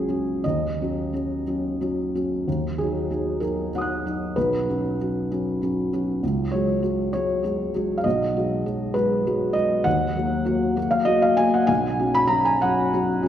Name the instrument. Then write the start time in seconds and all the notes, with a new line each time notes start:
felt piano
Already playing: C#2 F#3 C#4 F#4 G#4
0.08 F#3 C#4 F#4
0.44 D#2 D#5
0.80 F#3 C#4 F#4
1.13 F#3 C#4 F#4
1.47 F#3 C#4 F#4
1.81 F#3 C#4 F#4
2.15 F#3 C#4 F#4
2.48 D#2
2.78 F#3 D#4 F#4 G#4
3.10 F#3 D#4 F#4
3.40 F#3 D#4 F#4 A#4
3.75 F#3 D#4 F#4 F#5 D#6
3.81 F#6
4.06 F#3 D#4 F#4
4.36 B1 B4
4.69 F#3 C#4 F#4
5.01 F#3 C#4 F#4
5.31 F#3 C#4 F#4
5.62 F#3 C#4 F#4
5.93 F#3 C#4 F#4
6.23 C#2
6.52 F#3 G#3 F#4 C#5
6.82 F#3 G#3 F#4
7.13 F#3 G#3 F#4 C#5
7.43 F#3 G#3 F#4
7.75 F#3 G#3 F#4
7.98 F5
8.04 B1 D#5
8.36 F#3 G#3 F#4
8.66 F#3 G#3 F#4
8.94 F#3 G#3 F#4 B4
9.26 F#3 G#3 F#4
9.53 F#3 G#3 F#4 D#5
9.84 D#2 F#5
10.15 F#3 A#3 F#4
10.45 F#3 A#3 F#4
10.76 F#3 A#3 F#4
10.91 F5
11.05 F#3 A#3 F#4 D#5
11.22 F5
11.37 F#3 A#3 F#4 G#5
11.54 F#5
11.67 B1 G#5
11.99 F#3 C#4 F#4
12.15 B5
12.27 F#3 C#4 F#4 A#5
12.45 G#5
12.62 F#3 C#4 F#4 F#5
12.93 F#3 C#4 F#4
13.22 F#3 C#4 F#4